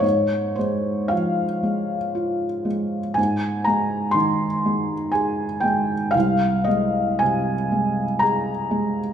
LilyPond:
<<
  \new Staff \with { instrumentName = "Felt piano" } { \time 3/4 \key aes \major \tempo 4 = 59 des''8 c''8 f''4. r8 | aes''8 bes''8 c'''4 aes''8 g''8 | f''8 ees''8 aes''4 bes''4 | }
  \new Staff \with { instrumentName = "Felt piano" } { \clef bass \time 3/4 \key aes \major aes,8 aes8 f8 aes8 f'8 aes8 | aes,8 aes8 ees8 aes8 aes'8 aes8 | c,8 aes8 c8 aes8 aes'8 aes8 | }
>>